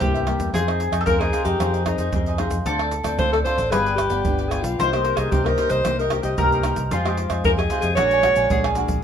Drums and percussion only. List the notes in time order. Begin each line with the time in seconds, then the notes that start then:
0.01 pandeiro, shaker, surdo
0.15 pandeiro, shaker
0.27 pandeiro, tamborim
0.40 pandeiro, shaker, surdo
0.55 pandeiro, shaker, surdo
0.68 pandeiro, tamborim, shaker
0.80 pandeiro
0.93 pandeiro, tamborim, shaker, surdo
1.07 pandeiro, shaker, surdo
1.21 pandeiro, tamborim, shaker
1.33 pandeiro, shaker, surdo
1.45 pandeiro, shaker, surdo
1.60 pandeiro, tamborim, shaker, surdo
1.74 pandeiro, shaker
1.86 pandeiro, tamborim, surdo
1.98 pandeiro, shaker
2.13 pandeiro, shaker, surdo
2.26 pandeiro, shaker
2.38 pandeiro, tamborim
2.51 pandeiro, shaker, surdo
2.66 pandeiro, shaker, surdo
2.79 pandeiro, tamborim, shaker
2.91 pandeiro, shaker
3.04 pandeiro, tamborim, shaker, surdo
3.19 pandeiro, shaker, surdo
3.34 pandeiro, tamborim, shaker
3.46 pandeiro, surdo
3.58 pandeiro, shaker, surdo
3.72 pandeiro, tamborim, shaker, surdo
3.86 pandeiro, shaker
3.98 pandeiro, tamborim, shaker, surdo
4.10 pandeiro, shaker
4.25 pandeiro, shaker, surdo
4.38 pandeiro, shaker
4.51 pandeiro, tamborim, shaker
4.64 pandeiro, shaker, surdo
4.80 pandeiro, shaker, surdo
4.93 pandeiro, tamborim, shaker
5.05 pandeiro
5.17 pandeiro, tamborim, shaker, surdo
5.32 pandeiro, shaker, surdo
5.46 pandeiro, tamborim, shaker
5.58 pandeiro
5.70 pandeiro, shaker, surdo
5.85 pandeiro, tamborim, shaker, surdo
5.99 pandeiro, shaker
6.10 pandeiro, tamborim, surdo
6.23 pandeiro, shaker
6.38 pandeiro, shaker, surdo
6.52 pandeiro, shaker
6.63 pandeiro, tamborim, shaker
6.76 pandeiro, shaker, surdo
6.91 pandeiro, shaker, surdo
7.06 pandeiro, tamborim, shaker
7.17 pandeiro
7.30 pandeiro, tamborim, shaker, surdo
7.45 pandeiro, shaker, surdo
7.59 pandeiro, tamborim, shaker
7.70 pandeiro, shaker, surdo
7.82 pandeiro, shaker, surdo
7.97 pandeiro, tamborim, shaker, surdo
8.11 pandeiro, shaker
8.23 pandeiro, tamborim, surdo
8.36 pandeiro, shaker
8.50 pandeiro, shaker, surdo
8.64 pandeiro, tamborim, shaker
8.75 pandeiro, shaker
8.88 pandeiro, shaker, surdo